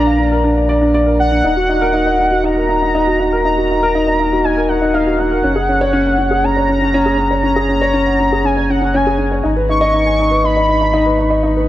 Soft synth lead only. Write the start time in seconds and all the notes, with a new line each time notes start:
Already playing: A#5
1.19 F#5
2.45 A#5
3.44 A#5
4.44 G#5
4.69 F#5
4.94 F5
5.19 F#5
6.44 A#5
7.44 A#5
8.45 G#5
8.70 F#5
8.95 G#5
9.70 C#6
10.45 B5